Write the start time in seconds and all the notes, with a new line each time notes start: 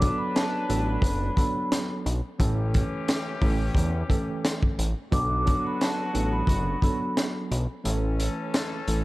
Already playing: B1 F#3 D4 B4 D6
0.00 F#3 B3 D4 A4, kick, closed hi-hat
0.18 B5
0.35 A5, snare, closed hi-hat
0.69 A1 F#3 B3 D4 A4, closed hi-hat
0.89 B5
1.02 F#1, kick, closed hi-hat
1.37 F#3 B3 D4 A4 B5, kick, closed hi-hat
1.72 snare, closed hi-hat
2.06 B1, closed hi-hat
2.38 A1 E3 A3 C#4 G4 A4, kick, closed hi-hat
2.74 kick, closed hi-hat
3.08 snare, closed hi-hat
3.42 A1 E3 A3 C#4 A4, kick, open hi-hat
3.75 E2, kick, closed hi-hat
4.09 E3 A3 C#4 A4, kick, closed hi-hat
4.45 snare, closed hi-hat
4.63 kick
4.79 A1, closed hi-hat
5.11 B1 D3 F#3 B3 D4 F#4 A4 D6, kick, closed hi-hat
5.45 F#3 B3 D4 A4, kick, closed hi-hat
5.67 B5
5.81 A5, snare, closed hi-hat
6.14 A1 F#3 B3 D4 A4, closed hi-hat
6.33 B5
6.47 F#1, kick, closed hi-hat
6.82 F#3 B3 D4 A4 B5, kick, closed hi-hat
7.17 snare, closed hi-hat
7.51 B1, closed hi-hat
7.84 A1 E3 A3 C#4 A4, closed hi-hat
8.20 closed hi-hat
8.54 snare, closed hi-hat
8.88 A1 E3 A3 C#4 A4, closed hi-hat